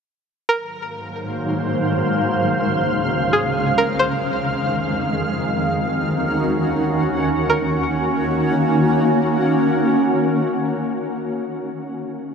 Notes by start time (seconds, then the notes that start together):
0.49 G#2 D#3 F#3 A#3 F#4 G#4 A#4 C5 F5
2.24 C#2 C#3 C#4
3.33 G#4
3.78 A#4
3.99 F2 D#3 G#3 D#4 G#4 C5 F5
5.75 D#2 C#4 F#4
7.49 D#3 A#3 C#4 F#4 A#4